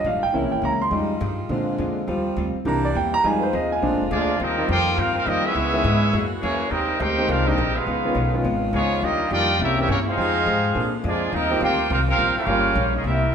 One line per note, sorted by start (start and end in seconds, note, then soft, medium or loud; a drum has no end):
0.00 0.33 D#3 medium
0.00 0.34 G3 medium
0.00 0.34 D4 medium
0.00 0.33 F4 medium
0.04 0.15 A#1 loud
0.04 0.24 D#3 medium
0.04 0.24 G3 medium
0.04 0.25 D4 medium
0.04 0.25 F4 medium
0.04 0.23 F5 medium
0.15 0.23 G1 medium
0.23 0.33 D#1 medium
0.23 0.34 G5 medium
0.33 0.43 C2 medium
0.33 0.53 C3 soft
0.33 0.91 C#3 medium
0.33 0.78 E3 soft
0.33 0.78 A#3 soft
0.33 0.92 A#3 medium
0.33 0.53 A#3 medium
0.33 0.79 C#4 medium
0.33 0.54 C#4 soft
0.33 0.91 E4 medium
0.33 0.54 E4 medium
0.33 0.52 E5 soft
0.43 0.53 A#1 medium
0.52 0.61 G1 medium
0.52 0.63 G5 medium
0.62 0.90 C#2 medium
0.62 0.82 C3 medium
0.62 0.82 A#3 medium
0.62 0.82 C#4 medium
0.62 0.83 E4 medium
0.62 0.82 A#5 medium
0.82 1.47 C6 medium
0.91 1.20 F2 medium
0.91 1.50 D#3 medium
0.91 1.11 F3 medium
0.91 1.13 G3 medium
0.91 1.50 G3 medium
0.91 1.13 G#3 soft
0.91 1.11 G#3 medium
0.91 2.08 G#3 medium
0.91 1.14 D#4 medium
0.91 1.12 D#4 medium
0.91 2.06 F4 medium
0.91 1.12 G4 medium
1.20 1.49 G2 loud
1.20 1.40 F3 medium
1.20 1.40 G#3 medium
1.20 1.40 D#4 medium
1.20 1.41 G4 medium
1.49 1.78 A#2 medium
1.49 1.69 A#2 medium
1.49 2.05 D3 medium
1.49 2.08 D3 medium
1.49 2.05 G#3 soft
1.49 1.69 G#3 medium
1.49 2.07 A#3 medium
1.49 2.06 C4 soft
1.49 1.70 D4 medium
1.49 1.70 F4 medium
1.78 2.07 F2 medium
1.78 1.98 A#2 medium
1.78 1.98 G#3 medium
1.78 1.98 D4 medium
1.78 1.99 F4 medium
2.07 2.36 D#2 loud
2.07 2.49 D#3 medium
2.07 2.27 D#3 medium
2.07 2.52 F3 medium
2.07 2.49 G3 medium
2.07 2.53 G3 medium
2.07 2.27 G3 medium
2.07 2.49 C4 medium
2.07 2.28 C4 medium
2.07 2.53 C4 medium
2.07 2.49 F4 medium
2.07 2.28 F4 medium
2.37 2.54 D2 loud
2.37 2.56 D#3 medium
2.37 2.57 G3 medium
2.37 2.57 C4 medium
2.37 2.57 F4 medium
2.54 muted upright bass stroke soft
2.65 2.94 C2 loud
2.65 2.85 C3 soft
2.65 2.87 E3 soft
2.65 3.24 E3 medium
2.65 2.86 G3 soft
2.65 2.87 A#3 soft
2.65 3.23 A#3 medium
2.65 2.86 A#3 medium
2.65 3.23 C4 medium
2.65 2.87 D4 medium
2.65 2.86 E4 medium
2.65 3.23 G4 medium
2.65 2.84 A#5 medium
2.85 2.95 D5 medium
2.94 3.23 E2 medium
2.94 3.14 C3 medium
2.94 3.14 G3 medium
2.94 3.14 A#3 medium
2.94 3.15 E4 medium
2.94 3.13 G5 medium
3.14 3.24 A#5 loud
3.24 3.52 F2 loud
3.24 3.82 D#3 medium
3.24 3.43 F3 medium
3.24 3.45 G3 medium
3.24 3.45 G#3 medium
3.24 4.39 G#3 medium
3.24 3.81 C4 medium
3.24 3.43 C4 medium
3.24 3.46 D#4 medium
3.24 3.44 D#4 medium
3.24 4.39 F4 medium
3.24 3.44 G#4 medium
3.24 3.43 G#5 medium
3.38 3.40 B4 soft
3.43 3.53 C5 medium
3.53 3.81 D#2 loud
3.53 3.72 F3 medium
3.53 3.72 C4 medium
3.53 3.72 D#4 medium
3.53 3.73 G#4 medium
3.53 3.71 D#5 medium
3.72 3.99 G#5 medium
3.82 3.92 A#1 medium
3.82 4.01 A#2 medium
3.82 4.40 D3 medium
3.82 4.01 F3 medium
3.82 4.03 G#3 medium
3.82 4.02 G#3 medium
3.82 4.40 A#3 medium
3.82 4.04 C4 soft
3.82 4.04 D4 medium
3.82 4.02 D4 medium
3.92 4.01 G#1 medium
4.01 4.10 F1 medium
4.11 4.39 D2 loud
4.11 4.30 A#2 medium
4.11 4.30 F3 medium
4.11 4.38 F3 medium
4.11 4.38 G#3 medium
4.11 4.30 G#3 medium
4.11 4.38 A#3 medium
4.11 4.38 D4 medium
4.11 4.30 D4 medium
4.11 4.39 F4 medium
4.11 4.39 G#4 medium
4.11 4.38 D5 loud
4.39 4.68 D#2 medium
4.39 4.59 D#3 medium
4.39 5.55 D#3 medium
4.39 4.59 G3 medium
4.39 5.55 G3 medium
4.39 4.66 A#3 medium
4.39 4.67 C4 medium
4.39 5.55 C4 medium
4.39 4.60 C4 medium
4.39 4.70 C4 medium
4.39 4.69 D#4 loud
4.39 5.55 F4 medium
4.39 4.60 F4 medium
4.39 4.70 G4 medium
4.39 4.69 A#4 medium
4.39 4.70 D#5 loud
4.58 4.68 D#3 medium
4.58 4.68 G3 medium
4.58 4.68 A#3 medium
4.58 4.68 C4 medium
4.58 4.68 F4 medium
4.67 4.97 F2 loud
4.67 4.88 D#3 medium
4.67 4.88 G3 medium
4.67 4.95 A#3 loud
4.67 4.95 C4 medium
4.67 4.88 C4 medium
4.67 4.96 F4 loud
4.67 4.89 F4 medium
4.67 4.95 G4 loud
4.67 4.96 A#4 medium
4.67 4.96 C5 medium
4.67 4.96 G5 loud
4.97 5.26 G2 medium
4.97 5.17 D#3 soft
4.97 5.17 G3 medium
4.97 5.14 A#3 medium
4.97 5.14 C4 medium
4.97 5.17 C4 medium
4.97 5.16 C4 medium
4.97 5.14 F4 medium
4.97 5.17 F4 medium
4.97 5.16 G4 medium
4.97 5.16 A#4 medium
4.97 5.16 F5 loud
5.15 5.25 A#3 medium
5.15 5.25 C4 medium
5.15 5.27 C4 medium
5.15 5.26 F4 medium
5.15 5.27 G4 medium
5.15 5.27 A#4 medium
5.15 5.27 F5 loud
5.25 5.55 F2 medium
5.25 5.45 D#3 medium
5.25 5.43 D#3 medium
5.25 5.45 G3 medium
5.25 5.43 G3 medium
5.25 5.44 A#3 medium
5.25 5.43 A#3 medium
5.25 5.44 C4 medium
5.25 5.46 C4 medium
5.25 5.43 C4 medium
5.25 5.45 C4 medium
5.25 5.44 D#4 medium
5.25 5.46 F4 medium
5.25 5.44 F4 medium
5.25 5.45 G4 medium
5.25 5.45 A#4 medium
5.25 5.45 D#5 loud
5.44 6.31 G#3 medium
5.44 6.14 B3 medium
5.44 6.32 C#4 medium
5.44 6.31 E4 loud
5.44 6.32 G#4 medium
5.44 6.14 B4 medium
5.44 6.32 E5 loud
5.55 5.84 C#2 loud
5.55 5.75 C#3 medium
5.55 6.13 C#3 medium
5.55 5.75 G#3 medium
5.55 7.85 G#3 medium
5.55 5.75 B3 medium
5.55 6.14 B3 medium
5.55 6.14 E4 medium
5.55 5.75 E4 medium
5.73 5.83 D#3 medium
5.73 5.84 G#3 medium
5.73 5.84 B3 medium
5.73 5.84 C#4 medium
5.73 5.84 E4 medium
5.84 6.12 G#2 loud
5.84 6.04 C#3 medium
5.84 6.04 G#3 medium
5.84 6.04 B3 medium
5.84 6.04 E4 medium
6.13 6.41 F#2 medium
6.13 6.71 E3 medium
6.13 6.32 F#3 soft
6.13 6.32 A#3 medium
6.13 7.85 A#3 medium
6.13 6.33 E4 medium
6.13 6.71 F#4 medium
6.13 6.33 G#4 medium
6.42 6.70 E2 loud
6.42 6.69 E3 medium
6.42 6.61 F#3 medium
6.42 6.69 A#3 medium
6.42 6.62 A#3 medium
6.42 6.69 C#4 medium
6.42 6.69 E4 medium
6.42 6.62 E4 medium
6.42 6.69 G#4 medium
6.42 6.62 G#4 medium
6.42 6.69 C#5 loud
6.70 6.99 D#2 medium
6.70 7.85 C3 medium
6.70 7.00 G3 medium
6.70 6.90 G#3 medium
6.70 7.00 C4 medium
6.70 6.90 C4 medium
6.70 7.00 D#4 medium
6.70 7.85 G4 medium
6.70 7.00 G4 medium
6.70 6.91 G4 medium
6.70 6.99 A#4 medium
6.70 6.91 A#4 medium
6.70 7.00 D#5 loud
7.00 7.28 D2 loud
7.00 7.19 G#3 medium
7.00 7.19 C4 medium
7.00 7.30 C4 medium
7.00 7.29 D#4 medium
7.00 7.30 D#4 medium
7.00 7.29 G4 medium
7.00 7.20 G4 medium
7.00 7.28 A#4 medium
7.00 7.20 A#4 medium
7.00 7.29 C5 medium
7.00 7.29 G5 loud
7.18 7.45 D#3 medium
7.18 7.45 G#3 medium
7.18 7.45 A#3 medium
7.18 7.46 C4 medium
7.18 7.46 G4 medium
7.28 7.57 C2 loud
7.28 7.48 G#3 soft
7.28 7.48 C4 soft
7.28 7.47 D4 medium
7.28 7.47 F4 medium
7.28 7.46 G4 medium
7.28 7.48 G4 medium
7.28 7.46 A#4 medium
7.28 7.49 A#4 medium
7.28 7.47 F5 loud
7.47 7.57 D#3 medium
7.47 7.76 G3 medium
7.47 7.57 G#3 medium
7.47 7.57 A#3 medium
7.47 7.76 C4 medium
7.47 7.57 C4 medium
7.47 7.58 D4 medium
7.47 7.76 D#4 medium
7.47 7.76 G4 medium
7.47 7.76 A#4 medium
7.47 7.76 D#5 loud
7.58 7.86 A#1 loud
7.58 7.77 G#3 medium
7.58 7.77 C4 medium
7.58 7.77 G4 medium
7.58 7.78 A#4 medium
7.76 8.35 G#3 medium
7.76 8.35 B3 medium
7.76 8.35 D#4 medium
7.76 8.35 F4 medium
7.76 8.35 G#4 medium
7.76 8.35 B4 medium
7.76 8.35 F5 loud
7.87 8.14 C#2 medium
7.87 8.06 C#3 medium
7.87 9.58 D#3 medium
7.87 8.85 B3 medium
7.87 8.06 B3 medium
7.87 8.85 C#4 medium
7.87 8.06 D#4 medium
7.87 9.58 F4 medium
7.87 8.07 F4 medium
8.05 8.15 D#3 medium
8.05 8.15 G#3 medium
8.05 8.15 B3 medium
8.05 8.15 C#4 medium
8.05 8.15 F4 medium
8.15 8.43 B1 loud
8.15 8.34 C#3 medium
8.15 8.35 B3 medium
8.15 8.35 D#4 medium
8.15 8.35 F4 medium
8.34 8.43 D#3 medium
8.34 8.43 G#3 medium
8.34 8.44 B3 medium
8.34 8.44 C#4 medium
8.34 8.44 F4 medium
8.44 8.72 G#1 loud
8.44 8.63 C#3 medium
8.44 8.64 B3 medium
8.44 8.64 D#4 medium
8.44 8.64 F4 medium
8.73 9.01 C#2 loud
8.73 8.92 C#3 medium
8.73 9.01 F3 medium
8.73 9.01 G#3 medium
8.73 8.92 B3 medium
8.73 9.01 B3 medium
8.73 9.01 C#4 medium
8.73 8.93 D#4 medium
8.73 8.93 F4 medium
8.73 9.01 F4 medium
8.73 9.01 G#4 medium
8.73 9.01 C#5 loud
9.02 9.30 D#2 medium
9.02 9.21 D#3 medium
9.02 9.59 G3 medium
9.02 9.21 G3 medium
9.02 9.32 G3 loud
9.02 9.32 A#3 medium
9.02 9.29 A#3 medium
9.02 9.59 D4 medium
9.02 9.21 D4 medium
9.02 9.32 D#4 medium
9.02 9.22 F4 medium
9.02 9.31 F4 medium
9.02 9.31 G4 medium
9.02 9.32 D#5 loud
9.31 9.59 F2 medium
9.31 9.50 D#3 medium
9.31 9.47 D#3 medium
9.31 9.47 G3 medium
9.31 9.50 G3 medium
9.31 9.58 A#3 medium
9.31 9.47 A#3 medium
9.31 9.58 D4 medium
9.31 9.50 D4 medium
9.31 9.47 D4 medium
9.31 9.48 F4 medium
9.31 9.51 F4 medium
9.31 9.58 F4 loud
9.31 9.58 G4 medium
9.31 9.59 A#4 medium
9.31 9.59 D5 loud
9.31 9.58 G5 loud
9.60 9.88 C2 loud
9.60 9.79 C3 soft
9.60 10.17 C#3 medium
9.60 9.77 G3 medium
9.60 10.17 A#3 medium
9.60 9.79 A#3 medium
9.60 9.77 A#3 medium
9.60 10.17 C4 medium
9.60 9.79 C#4 medium
9.60 9.78 C#4 medium
9.60 9.77 E4 medium
9.60 10.17 E4 medium
9.60 9.79 E4 medium
9.60 9.78 G4 medium
9.60 9.78 A#4 medium
9.60 9.78 E5 loud
9.77 9.87 E3 medium
9.77 9.87 G3 medium
9.77 9.87 A#3 medium
9.77 9.88 C4 medium
9.77 9.88 C#4 medium
9.77 9.89 C#4 medium
9.77 9.88 E4 medium
9.77 9.88 G4 medium
9.77 9.90 G4 medium
9.77 9.89 A#4 medium
9.77 9.89 E5 loud
9.88 10.16 G2 loud
9.88 10.08 C3 medium
9.88 9.97 G3 medium
9.88 9.97 A#3 medium
9.88 10.08 A#3 medium
9.88 9.98 A#3 medium
9.88 9.97 C#4 medium
9.88 10.08 C#4 medium
9.88 10.08 E4 medium
9.88 9.98 E4 medium
9.88 9.98 G4 medium
9.88 9.98 C#5 loud
10.06 10.89 G#3 loud
10.06 10.89 C4 medium
10.06 10.72 D#4 loud
10.06 10.89 F4 loud
10.06 10.90 G#4 medium
10.06 10.90 C5 medium
10.06 10.90 F5 loud
10.17 10.45 F2 medium
10.17 10.36 F3 medium
10.17 10.60 F3 medium
10.17 10.75 F3 medium
10.17 10.36 G#3 medium
10.17 10.61 G#3 medium
10.17 11.32 G#3 medium
10.17 10.61 C4 medium
10.17 10.37 D#4 medium
10.17 10.61 D#4 medium
10.17 10.75 D#4 medium
10.17 10.37 G4 medium
10.17 10.75 G#4 medium
10.17 10.61 G5 medium
10.46 10.74 G#2 loud
10.46 10.65 F3 medium
10.46 10.65 G#3 medium
10.46 10.66 D#4 medium
10.46 10.66 G4 medium
10.74 11.03 A#2 medium
10.74 10.94 A#2 soft
10.74 11.33 D3 medium
10.74 10.91 F3 medium
10.74 10.94 G#3 medium
10.74 10.91 A#3 medium
10.74 11.33 A#3 medium
10.74 10.91 C4 medium
10.74 10.91 D4 medium
10.74 10.95 D4 medium
10.74 13.04 F4 loud
10.74 10.95 F4 medium
10.74 10.91 G#4 medium
11.04 11.32 F2 loud
11.04 11.23 A#2 medium
11.04 11.31 F3 medium
11.04 11.23 G#3 medium
11.04 11.31 G#3 medium
11.04 11.32 A#3 medium
11.04 11.31 D4 medium
11.04 11.23 D4 medium
11.04 11.23 F4 medium
11.04 11.32 F4 medium
11.04 11.32 G#4 medium
11.04 11.32 D5 loud
11.32 11.60 D#2 loud
11.32 11.51 D#3 medium
11.32 12.47 D#3 medium
11.32 11.51 G3 medium
11.32 12.47 G3 medium
11.32 11.61 A#3 medium
11.32 11.52 C4 medium
11.32 11.60 C4 loud
11.32 12.47 C4 medium
11.32 11.62 C4 medium
11.32 11.62 D#4 loud
11.32 11.52 F4 medium
11.32 11.62 G4 medium
11.32 11.62 A#4 medium
11.32 11.62 D#5 loud
11.50 11.60 F3 medium
11.50 11.60 A#3 medium
11.50 11.60 C4 medium
11.50 11.60 D#4 medium
11.50 11.61 G4 medium
11.61 11.89 D2 loud
11.61 11.80 D#3 medium
11.61 11.80 G3 medium
11.61 11.88 A#3 medium
11.61 11.88 C4 medium
11.61 11.81 C4 medium
11.61 11.81 F4 medium
11.61 11.89 F4 medium
11.61 11.88 G4 medium
11.61 11.89 A#4 medium
11.61 11.89 C5 loud
11.61 11.89 G5 loud
11.90 12.18 C2 loud
11.90 12.09 D#3 soft
11.90 12.09 G3 medium
11.90 11.98 A#3 medium
11.90 11.98 C4 medium
11.90 12.09 C4 medium
11.90 12.00 C4 medium
11.90 11.98 F4 medium
11.90 12.09 F4 medium
11.90 12.00 G4 medium
11.90 12.00 A#4 medium
11.90 12.00 F5 loud
12.08 12.35 A#3 medium
12.08 12.35 C4 medium
12.08 12.36 C4 medium
12.08 12.35 F4 medium
12.08 12.36 G4 medium
12.08 12.36 A#4 loud
12.08 12.36 F5 loud
12.18 12.35 A#1 medium
12.18 12.38 D#3 medium
12.18 12.38 G3 medium
12.18 12.38 C4 medium
12.18 12.38 F4 medium
12.36 12.91 A#3 medium
12.36 12.91 C#4 medium
12.36 12.91 C#4 loud
12.36 12.91 F4 loud
12.36 12.91 G4 medium
12.36 12.91 A#4 medium
12.36 12.91 F5 loud
12.36 muted upright bass stroke soft
12.47 12.75 G1 loud
12.47 12.66 G2 medium
12.47 13.04 C#3 medium
12.47 12.66 F3 medium
12.47 12.90 G3 medium
12.47 13.35 G3 medium
12.47 12.91 A#3 medium
12.47 12.67 A#3 medium
12.47 13.35 A#3 medium
12.47 12.91 C#4 medium
12.47 12.67 C#4 medium
12.47 12.91 F4 medium
12.47 12.91 G4 medium
12.75 13.03 A#1 loud
12.75 12.95 G2 medium
12.75 12.95 F3 medium
12.75 12.96 A#3 medium
12.75 12.96 C#4 medium
12.95 13.05 C#4 medium
12.95 13.05 D#4 medium
12.95 13.05 F4 medium
12.95 13.05 G#4 medium
12.95 13.05 D#5 medium
13.04 13.32 C2 medium
13.04 13.35 C3 medium
13.04 13.24 C3 soft
13.04 13.24 G3 soft
13.04 13.35 G3 medium
13.04 13.35 A#3 medium
13.04 13.25 A#3 medium
13.04 13.35 C4 medium
13.04 13.35 E4 medium
13.04 13.25 E4 medium
13.04 13.35 G4 medium
13.04 13.35 A#4 medium
13.04 13.35 E5 medium